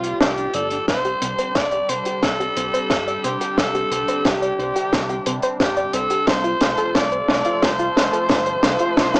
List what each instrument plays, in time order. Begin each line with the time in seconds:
Already playing: analog synth bass C2, analog synth pad A2 F3 G4 D5, alto saxophone F4
0.04 clean electric guitar F4, closed hi-hat
0.21 analog synth bass C2, alto saxophone G4, clean electric guitar D5, snare, closed hi-hat
0.38 clean electric guitar D4, closed hi-hat
0.54 analog synth bass G1, alto saxophone A4, clean electric guitar D5, closed hi-hat
0.70 clean electric guitar D4, closed hi-hat
0.88 analog synth bass C2, analog synth pad C3 D3 G3 D4 G4, synth arpeggio sound C4, clean electric guitar C4, alto saxophone C5, kick, snare, closed hi-hat
1.05 clean electric guitar C4, synth arpeggio sound G4, closed hi-hat
1.22 analog synth bass C2, synth arpeggio sound C4, clean electric guitar C5, closed hi-hat
1.39 clean electric guitar C4, synth arpeggio sound C5, closed hi-hat
1.55 analog synth bass C2, clean electric guitar C4, synth arpeggio sound C4, alto saxophone D5, kick, snare, closed hi-hat
1.71 clean electric guitar G4, synth arpeggio sound D5, closed hi-hat
1.89 analog synth bass C2, synth arpeggio sound C4, clean electric guitar C5, alto saxophone C5, closed hi-hat
2.05 clean electric guitar G4, synth arpeggio sound G4, closed hi-hat
2.23 analog synth bass C2, clean electric guitar C4, synth arpeggio sound C4, alto saxophone A4, kick, snare, closed hi-hat
2.40 clean electric guitar C4, synth arpeggio sound G4, closed hi-hat
2.57 analog synth bass C2, synth arpeggio sound C4, clean electric guitar C5, closed hi-hat
2.74 clean electric guitar C4, synth arpeggio sound C5, closed hi-hat
2.90 analog synth bass G1, synth arpeggio sound C4, clean electric guitar C4, kick, snare, closed hi-hat
3.07 clean electric guitar G4, synth arpeggio sound D5, closed hi-hat
3.24 analog synth bass C2, synth arpeggio sound C4, alto saxophone G4, clean electric guitar C5, closed hi-hat
3.41 clean electric guitar G4, synth arpeggio sound G4, closed hi-hat
3.58 analog synth bass C2, clean electric guitar C4, synth arpeggio sound C4, alto saxophone A4, kick, snare, closed hi-hat
3.75 clean electric guitar C4, synth arpeggio sound G4, closed hi-hat
3.91 analog synth bass C2, synth arpeggio sound C4, clean electric guitar C5, closed hi-hat
4.08 clean electric guitar C4, synth arpeggio sound C5, closed hi-hat
4.25 analog synth bass C2, clean electric guitar C4, synth arpeggio sound C4, alto saxophone G4, kick, snare, closed hi-hat
4.42 clean electric guitar G4, synth arpeggio sound D5, closed hi-hat
4.59 analog synth bass C2, synth arpeggio sound C4, clean electric guitar C5, closed hi-hat
4.76 clean electric guitar G4, synth arpeggio sound G4, closed hi-hat
4.92 analog synth bass C2, clean electric guitar C4, synth arpeggio sound C4, kick, snare, closed hi-hat
5.09 clean electric guitar C4, synth arpeggio sound G4, closed hi-hat
5.26 analog synth bass C2, synth arpeggio sound C4, clean electric guitar C5, closed hi-hat
5.42 clean electric guitar C4, synth arpeggio sound C5, closed hi-hat
5.60 analog synth bass G1, clean electric guitar C4, synth arpeggio sound C4, alto saxophone G4, kick, snare, closed hi-hat
5.77 clean electric guitar G4, synth arpeggio sound D5, closed hi-hat
5.93 analog synth bass C2, synth arpeggio sound C4, alto saxophone A4, clean electric guitar C5, closed hi-hat
6.10 synth arpeggio sound G4, clean electric guitar G4, closed hi-hat
6.27 analog synth bass C2, analog synth pad F3 A3 F4 A4, synth arpeggio sound A3, clean electric guitar F4, alto saxophone C5, kick, snare, closed hi-hat
6.44 synth arpeggio sound F4, clean electric guitar F4, closed hi-hat
6.61 analog synth bass C2, synth arpeggio sound A3, clean electric guitar F5, snare, closed hi-hat
6.77 clean electric guitar F4, synth arpeggio sound A4, closed hi-hat
6.95 analog synth bass C2, synth arpeggio sound A3, clean electric guitar F4, alto saxophone D5, kick, snare, closed hi-hat
7.12 clean electric guitar C5, synth arpeggio sound C5, closed hi-hat
7.28 analog synth bass C2, synth arpeggio sound A3, clean electric guitar F5, snare, closed hi-hat
7.45 synth arpeggio sound F4, clean electric guitar C5, closed hi-hat
7.62 analog synth bass C2, synth arpeggio sound A3, clean electric guitar F4, alto saxophone C5, kick, snare, closed hi-hat
7.79 synth arpeggio sound F4, clean electric guitar F4, closed hi-hat
7.96 analog synth bass C2, synth arpeggio sound A3, clean electric guitar F5, snare, closed hi-hat
8.13 clean electric guitar F4, synth arpeggio sound A4, closed hi-hat
8.29 analog synth bass G1, synth arpeggio sound A3, clean electric guitar F4, kick, snare, closed hi-hat
8.46 clean electric guitar C5, synth arpeggio sound C5, closed hi-hat
8.63 analog synth bass C2, synth arpeggio sound A3, clean electric guitar F5, snare, closed hi-hat
8.79 synth arpeggio sound F4, clean electric guitar C5, closed hi-hat
8.97 analog synth bass C2, synth arpeggio sound A3, clean electric guitar F4, analog synth pad G4, kick, snare, closed hi-hat
9.14 synth arpeggio sound F4, clean electric guitar F4, snare, closed hi-hat